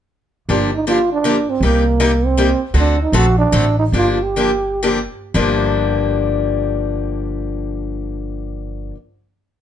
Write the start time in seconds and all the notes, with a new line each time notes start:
0.49 G1 D3 F3 A#3 D4 G4
0.74 D#4
0.87 D3 F3 A#3 D4 F4 G4
1.12 D4
1.24 D3 F3 A#3 D4 G4
1.50 C4
1.60 C2 C3 G3 A#3 D#4 G4
1.65 A#3
2.00 C3 G3 A#3 D#4 G4
2.26 C4
2.37 C3 G3 A#3 D#4 G4
2.74 D2 D3 A3 C4 F#4 A4
2.78 D4
3.02 D#4
3.12 A#1 D3 A3 C4 F#4 A4
3.38 D4
3.52 A1 D3 A3 C4 F#4 A4
3.79 D#4
3.92 G1 D3 F3 A#3 D4 F4 G4
4.11 F4
4.23 G4
4.36 D3 F3 A#3 D4 G4
4.83 D3 F3 A#3 D4 G4
5.34 G1 G2 D3 F3 A#3 D4 G4